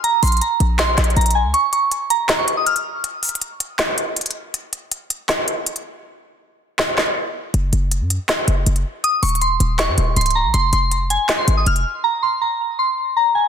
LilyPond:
<<
  \new Staff \with { instrumentName = "Synth bell" } { \time 4/4 \key f \phrygian \tempo 4 = 160 bes''8 c'''8 bes''4 c'''4 bes''8 aes''8 | des'''8 des'''4 bes''8. des'''8 ees'''16 f'''8 r8 | r1 | r1 |
r1 | r1 | ees'''8 des'''8 c'''4 des'''4 c'''8 bes''8 | c'''8 c'''4 aes''8. c'''8 ees'''16 f'''8 r8 |
bes''8 c'''8 bes''4 c'''4 bes''8 aes''8 | }
  \new Staff \with { instrumentName = "808-style bass" } { \clef bass \time 4/4 \key f \phrygian r8 bes,,8 r8 bes,,4 bes,,8 bes,,8. des,16 | r1 | r1 | r1 |
r1 | ges,,8 ges,,8. ges,8 r8. ges,,8 ges,,8 r8 | r8 ees,,4 ees,,8. ges,16 ees,,8 des,,8. bes,,16 | f,,8 f,,4~ f,,16 r8. aes,,8 f,,8 r8 |
r1 | }
  \new DrumStaff \with { instrumentName = "Drums" } \drummode { \time 4/4 hh8 <hh hho>32 hh32 hh32 hh32 hh8 hh8 \tuplet 3/2 { <hc hh sn>16 r16 r16 <hc hh sn>16 hh16 hh16 } hh32 hh32 hh32 hh8 r32 | hh8 hh8 hh8 hh8 <hc hh sn>8 hh8 hh16 hh8. | \tuplet 3/2 { hh16 r16 r16 <hh hho>16 hh16 hh16 } hh8 hh8 <hc hh sn>8 hh8 hh32 hh32 hh32 hh8 r32 | hh8 hh8 hh8 hh8 <hc hh sn>8 hh8 hh16 hh8. |
r4 r4 <hc sn>8 <hc sn>8 r4 | hh8 hh8 hh8 hh8 <hc hh sn>8 hh8 hh16 hh8. | \tuplet 3/2 { hh16 r16 r16 <hh hho>16 hh16 hh16 } hh8 hh8 <hc hh sn>8 hh8 hh32 hh32 hh32 hh8 r32 | hh8 hh8 hh8 hh8 <hc hh sn>8 hh8 hh16 hh8. |
r4 r4 r4 r4 | }
>>